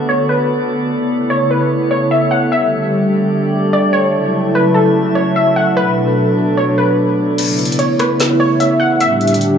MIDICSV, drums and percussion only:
0, 0, Header, 1, 2, 480
1, 0, Start_track
1, 0, Tempo, 405405
1, 1062, Time_signature, 4, 2, 24, 8
1, 11344, End_track
2, 0, Start_track
2, 0, Title_t, "Drums"
2, 8742, Note_on_c, 9, 42, 70
2, 8742, Note_on_c, 9, 49, 99
2, 8860, Note_off_c, 9, 42, 0
2, 8860, Note_off_c, 9, 49, 0
2, 8982, Note_on_c, 9, 42, 41
2, 9063, Note_off_c, 9, 42, 0
2, 9063, Note_on_c, 9, 42, 57
2, 9143, Note_off_c, 9, 42, 0
2, 9143, Note_on_c, 9, 42, 70
2, 9223, Note_off_c, 9, 42, 0
2, 9223, Note_on_c, 9, 42, 68
2, 9342, Note_off_c, 9, 42, 0
2, 9465, Note_on_c, 9, 42, 72
2, 9471, Note_on_c, 9, 37, 106
2, 9584, Note_off_c, 9, 42, 0
2, 9589, Note_off_c, 9, 37, 0
2, 9705, Note_on_c, 9, 42, 77
2, 9714, Note_on_c, 9, 38, 115
2, 9823, Note_off_c, 9, 42, 0
2, 9833, Note_off_c, 9, 38, 0
2, 10184, Note_on_c, 9, 42, 72
2, 10303, Note_off_c, 9, 42, 0
2, 10662, Note_on_c, 9, 42, 68
2, 10780, Note_off_c, 9, 42, 0
2, 10903, Note_on_c, 9, 42, 43
2, 10981, Note_off_c, 9, 42, 0
2, 10981, Note_on_c, 9, 42, 58
2, 11061, Note_off_c, 9, 42, 0
2, 11061, Note_on_c, 9, 42, 70
2, 11142, Note_off_c, 9, 42, 0
2, 11142, Note_on_c, 9, 42, 68
2, 11260, Note_off_c, 9, 42, 0
2, 11344, End_track
0, 0, End_of_file